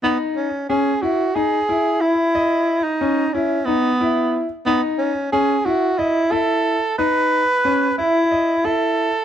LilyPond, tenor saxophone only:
\new Staff \with { instrumentName = "Tenor saxophone" } { \time 7/8 \key cis \minor \tempo 4 = 91 b8 cis'8 gis'8 fis'8 gis'4 e'8~ | e'8. dis'8. cis'8 b4 r8 | b8 cis'8 gis'8 fis'8 e'8 a'4 | b'4. e'4 a'4 | }